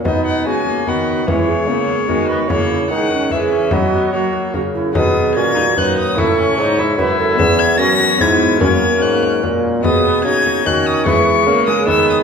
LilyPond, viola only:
\new Staff \with { instrumentName = "Viola" } { \time 3/4 \key b \major \tempo 4 = 147 b4 gis8 ais8 b4 | gis4 ais4 gis8 b8 | ais4 gis4 gis8 cis'8 | b8 b8 ais4. r8 |
b4 cis'8 dis'8 dis'4 | e'8 cis'8 dis'8 e'8 e'4~ | e'4 cis'4 b4 | cis'2~ cis'8 r8 |
b8 b8 dis'4 cis'4 | b4 ais8 gis8 b4 | }